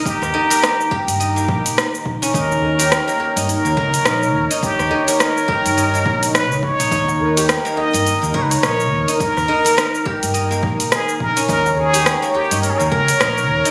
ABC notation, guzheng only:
X:1
M:4/4
L:1/16
Q:"Swing 16ths" 1/4=105
K:none
V:1 name="Guzheng"
_e _B, _E _B E z G z e B,4 z2 _D | _E3 G2 _B, G E2 B, _B z E z2 E | _e _B, _E _B E z G z e B, z4 z E | _E3 G _B, B, G E2 B, _B z E z2 E |
_e z _E _B E z G z e _B,4 z2 _D | _E3 G _B, B, G E2 B, _B z E z2 E |]